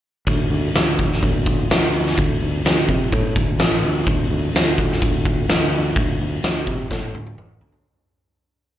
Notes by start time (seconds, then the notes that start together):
0.27 D2, kick, open hi-hat
0.50 D2
0.74 D2, snare, open hi-hat
0.99 kick
1.12 snare
1.23 D2, kick, open hi-hat
1.46 kick
1.70 D2, snare, open hi-hat
2.07 snare
2.17 D2, kick, open hi-hat
2.41 D2
2.65 D2, snare, open hi-hat
2.89 C3, kick
3.12 A2, kick, open hi-hat
3.36 D2, kick
3.59 A1, snare, open hi-hat
3.82 D2
4.06 D2, kick, open hi-hat
4.30 D2
4.53 D2, snare, open hi-hat
4.78 kick
4.92 snare
5.02 D2, kick, open hi-hat
5.25 kick
5.48 D2, snare, open hi-hat
5.95 D2, kick, open hi-hat
6.20 D2
6.43 D2, snare, open hi-hat
6.67 C3, kick
6.91 A2, kick, snare
7.14 D2, high tom
7.27 high tom
7.37 A1, mid tom
7.61 D2, floor tom
7.72 floor tom